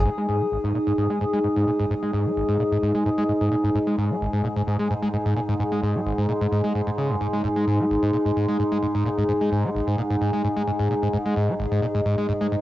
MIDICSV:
0, 0, Header, 1, 4, 480
1, 0, Start_track
1, 0, Tempo, 461538
1, 58, Time_signature, 4, 2, 24, 8
1, 13115, End_track
2, 0, Start_track
2, 0, Title_t, "Ambient pad"
2, 0, Program_c, 0, 92
2, 0, Note_on_c, 0, 63, 96
2, 0, Note_on_c, 0, 68, 82
2, 0, Note_on_c, 0, 80, 96
2, 0, Note_on_c, 0, 87, 90
2, 13115, Note_off_c, 0, 63, 0
2, 13115, Note_off_c, 0, 68, 0
2, 13115, Note_off_c, 0, 80, 0
2, 13115, Note_off_c, 0, 87, 0
2, 13115, End_track
3, 0, Start_track
3, 0, Title_t, "Synth drone"
3, 0, Program_c, 1, 95
3, 57, Note_on_c, 1, 44, 76
3, 57, Note_on_c, 1, 56, 74
3, 13115, Note_off_c, 1, 44, 0
3, 13115, Note_off_c, 1, 56, 0
3, 13115, End_track
4, 0, Start_track
4, 0, Title_t, "Acid bass"
4, 0, Program_c, 2, 38
4, 58, Note_on_c, 2, 44, 98
4, 100, Note_off_c, 2, 44, 0
4, 185, Note_on_c, 2, 56, 76
4, 278, Note_off_c, 2, 56, 0
4, 299, Note_on_c, 2, 44, 92
4, 425, Note_on_c, 2, 56, 101
4, 440, Note_off_c, 2, 44, 0
4, 487, Note_off_c, 2, 56, 0
4, 539, Note_on_c, 2, 32, 79
4, 608, Note_off_c, 2, 32, 0
4, 665, Note_on_c, 2, 44, 92
4, 759, Note_off_c, 2, 44, 0
4, 779, Note_on_c, 2, 46, 75
4, 820, Note_off_c, 2, 46, 0
4, 905, Note_on_c, 2, 44, 104
4, 967, Note_off_c, 2, 44, 0
4, 1019, Note_on_c, 2, 44, 99
4, 1123, Note_off_c, 2, 44, 0
4, 1146, Note_on_c, 2, 56, 72
4, 1239, Note_off_c, 2, 56, 0
4, 1259, Note_on_c, 2, 44, 99
4, 1300, Note_off_c, 2, 44, 0
4, 1386, Note_on_c, 2, 56, 93
4, 1448, Note_off_c, 2, 56, 0
4, 1499, Note_on_c, 2, 44, 79
4, 1541, Note_off_c, 2, 44, 0
4, 1626, Note_on_c, 2, 44, 101
4, 1719, Note_off_c, 2, 44, 0
4, 1739, Note_on_c, 2, 46, 77
4, 1780, Note_off_c, 2, 46, 0
4, 1866, Note_on_c, 2, 44, 95
4, 1928, Note_off_c, 2, 44, 0
4, 1979, Note_on_c, 2, 44, 102
4, 2020, Note_off_c, 2, 44, 0
4, 2105, Note_on_c, 2, 56, 74
4, 2199, Note_off_c, 2, 56, 0
4, 2219, Note_on_c, 2, 44, 96
4, 2345, Note_on_c, 2, 56, 99
4, 2360, Note_off_c, 2, 44, 0
4, 2407, Note_off_c, 2, 56, 0
4, 2458, Note_on_c, 2, 32, 85
4, 2528, Note_off_c, 2, 32, 0
4, 2584, Note_on_c, 2, 44, 96
4, 2678, Note_off_c, 2, 44, 0
4, 2698, Note_on_c, 2, 46, 79
4, 2740, Note_off_c, 2, 46, 0
4, 2825, Note_on_c, 2, 44, 103
4, 2887, Note_off_c, 2, 44, 0
4, 2938, Note_on_c, 2, 44, 99
4, 3042, Note_off_c, 2, 44, 0
4, 3065, Note_on_c, 2, 56, 77
4, 3158, Note_off_c, 2, 56, 0
4, 3178, Note_on_c, 2, 44, 97
4, 3220, Note_off_c, 2, 44, 0
4, 3305, Note_on_c, 2, 56, 97
4, 3367, Note_off_c, 2, 56, 0
4, 3418, Note_on_c, 2, 44, 82
4, 3460, Note_off_c, 2, 44, 0
4, 3544, Note_on_c, 2, 44, 104
4, 3638, Note_off_c, 2, 44, 0
4, 3657, Note_on_c, 2, 46, 77
4, 3700, Note_off_c, 2, 46, 0
4, 3784, Note_on_c, 2, 44, 95
4, 3847, Note_off_c, 2, 44, 0
4, 3898, Note_on_c, 2, 44, 94
4, 3940, Note_off_c, 2, 44, 0
4, 4025, Note_on_c, 2, 56, 75
4, 4119, Note_off_c, 2, 56, 0
4, 4138, Note_on_c, 2, 44, 99
4, 4265, Note_on_c, 2, 56, 103
4, 4280, Note_off_c, 2, 44, 0
4, 4327, Note_off_c, 2, 56, 0
4, 4379, Note_on_c, 2, 32, 82
4, 4448, Note_off_c, 2, 32, 0
4, 4503, Note_on_c, 2, 44, 96
4, 4598, Note_off_c, 2, 44, 0
4, 4618, Note_on_c, 2, 46, 75
4, 4660, Note_off_c, 2, 46, 0
4, 4745, Note_on_c, 2, 44, 104
4, 4807, Note_off_c, 2, 44, 0
4, 4858, Note_on_c, 2, 44, 102
4, 4963, Note_off_c, 2, 44, 0
4, 4985, Note_on_c, 2, 56, 79
4, 5078, Note_off_c, 2, 56, 0
4, 5099, Note_on_c, 2, 44, 99
4, 5140, Note_off_c, 2, 44, 0
4, 5224, Note_on_c, 2, 56, 91
4, 5287, Note_off_c, 2, 56, 0
4, 5339, Note_on_c, 2, 44, 82
4, 5380, Note_off_c, 2, 44, 0
4, 5465, Note_on_c, 2, 44, 100
4, 5559, Note_off_c, 2, 44, 0
4, 5579, Note_on_c, 2, 46, 77
4, 5620, Note_off_c, 2, 46, 0
4, 5706, Note_on_c, 2, 44, 96
4, 5768, Note_off_c, 2, 44, 0
4, 5819, Note_on_c, 2, 44, 99
4, 5860, Note_off_c, 2, 44, 0
4, 5946, Note_on_c, 2, 56, 77
4, 6039, Note_off_c, 2, 56, 0
4, 6059, Note_on_c, 2, 44, 96
4, 6186, Note_on_c, 2, 56, 104
4, 6202, Note_off_c, 2, 44, 0
4, 6248, Note_off_c, 2, 56, 0
4, 6299, Note_on_c, 2, 32, 80
4, 6368, Note_off_c, 2, 32, 0
4, 6425, Note_on_c, 2, 44, 99
4, 6519, Note_off_c, 2, 44, 0
4, 6538, Note_on_c, 2, 46, 80
4, 6580, Note_off_c, 2, 46, 0
4, 6664, Note_on_c, 2, 44, 98
4, 6727, Note_off_c, 2, 44, 0
4, 6777, Note_on_c, 2, 44, 99
4, 6882, Note_off_c, 2, 44, 0
4, 6905, Note_on_c, 2, 56, 74
4, 6999, Note_off_c, 2, 56, 0
4, 7018, Note_on_c, 2, 44, 74
4, 7088, Note_off_c, 2, 44, 0
4, 7144, Note_on_c, 2, 44, 74
4, 7182, Note_off_c, 2, 44, 0
4, 7257, Note_on_c, 2, 49, 82
4, 7384, Note_on_c, 2, 42, 78
4, 7399, Note_off_c, 2, 49, 0
4, 7447, Note_off_c, 2, 42, 0
4, 7497, Note_on_c, 2, 44, 78
4, 7567, Note_off_c, 2, 44, 0
4, 7624, Note_on_c, 2, 56, 69
4, 7718, Note_off_c, 2, 56, 0
4, 7739, Note_on_c, 2, 44, 97
4, 7780, Note_off_c, 2, 44, 0
4, 7865, Note_on_c, 2, 56, 76
4, 7958, Note_off_c, 2, 56, 0
4, 7978, Note_on_c, 2, 44, 95
4, 8104, Note_on_c, 2, 56, 102
4, 8120, Note_off_c, 2, 44, 0
4, 8167, Note_off_c, 2, 56, 0
4, 8217, Note_on_c, 2, 32, 84
4, 8287, Note_off_c, 2, 32, 0
4, 8344, Note_on_c, 2, 44, 96
4, 8438, Note_off_c, 2, 44, 0
4, 8458, Note_on_c, 2, 46, 76
4, 8500, Note_off_c, 2, 46, 0
4, 8584, Note_on_c, 2, 44, 103
4, 8647, Note_off_c, 2, 44, 0
4, 8698, Note_on_c, 2, 44, 101
4, 8802, Note_off_c, 2, 44, 0
4, 8824, Note_on_c, 2, 56, 75
4, 8918, Note_off_c, 2, 56, 0
4, 8937, Note_on_c, 2, 44, 99
4, 8980, Note_off_c, 2, 44, 0
4, 9065, Note_on_c, 2, 56, 97
4, 9127, Note_off_c, 2, 56, 0
4, 9178, Note_on_c, 2, 44, 86
4, 9220, Note_off_c, 2, 44, 0
4, 9305, Note_on_c, 2, 44, 100
4, 9398, Note_off_c, 2, 44, 0
4, 9418, Note_on_c, 2, 46, 78
4, 9460, Note_off_c, 2, 46, 0
4, 9545, Note_on_c, 2, 44, 101
4, 9607, Note_off_c, 2, 44, 0
4, 9659, Note_on_c, 2, 44, 98
4, 9700, Note_off_c, 2, 44, 0
4, 9786, Note_on_c, 2, 56, 76
4, 9879, Note_off_c, 2, 56, 0
4, 9899, Note_on_c, 2, 44, 97
4, 10025, Note_on_c, 2, 56, 102
4, 10040, Note_off_c, 2, 44, 0
4, 10087, Note_off_c, 2, 56, 0
4, 10139, Note_on_c, 2, 32, 82
4, 10208, Note_off_c, 2, 32, 0
4, 10266, Note_on_c, 2, 44, 100
4, 10359, Note_off_c, 2, 44, 0
4, 10380, Note_on_c, 2, 46, 76
4, 10420, Note_off_c, 2, 46, 0
4, 10506, Note_on_c, 2, 44, 100
4, 10568, Note_off_c, 2, 44, 0
4, 10619, Note_on_c, 2, 44, 100
4, 10723, Note_off_c, 2, 44, 0
4, 10745, Note_on_c, 2, 56, 74
4, 10839, Note_off_c, 2, 56, 0
4, 10858, Note_on_c, 2, 44, 95
4, 10900, Note_off_c, 2, 44, 0
4, 10986, Note_on_c, 2, 56, 99
4, 11048, Note_off_c, 2, 56, 0
4, 11098, Note_on_c, 2, 44, 82
4, 11140, Note_off_c, 2, 44, 0
4, 11224, Note_on_c, 2, 44, 103
4, 11318, Note_off_c, 2, 44, 0
4, 11339, Note_on_c, 2, 46, 78
4, 11380, Note_off_c, 2, 46, 0
4, 11465, Note_on_c, 2, 44, 93
4, 11527, Note_off_c, 2, 44, 0
4, 11579, Note_on_c, 2, 44, 96
4, 11620, Note_off_c, 2, 44, 0
4, 11704, Note_on_c, 2, 56, 78
4, 11798, Note_off_c, 2, 56, 0
4, 11818, Note_on_c, 2, 44, 96
4, 11944, Note_on_c, 2, 56, 104
4, 11960, Note_off_c, 2, 44, 0
4, 12007, Note_off_c, 2, 56, 0
4, 12058, Note_on_c, 2, 32, 81
4, 12128, Note_off_c, 2, 32, 0
4, 12184, Note_on_c, 2, 44, 99
4, 12278, Note_off_c, 2, 44, 0
4, 12298, Note_on_c, 2, 46, 78
4, 12340, Note_off_c, 2, 46, 0
4, 12424, Note_on_c, 2, 44, 104
4, 12487, Note_off_c, 2, 44, 0
4, 12538, Note_on_c, 2, 44, 100
4, 12643, Note_off_c, 2, 44, 0
4, 12666, Note_on_c, 2, 56, 77
4, 12759, Note_off_c, 2, 56, 0
4, 12779, Note_on_c, 2, 44, 99
4, 12820, Note_off_c, 2, 44, 0
4, 12905, Note_on_c, 2, 56, 97
4, 12967, Note_off_c, 2, 56, 0
4, 13019, Note_on_c, 2, 44, 82
4, 13060, Note_off_c, 2, 44, 0
4, 13115, End_track
0, 0, End_of_file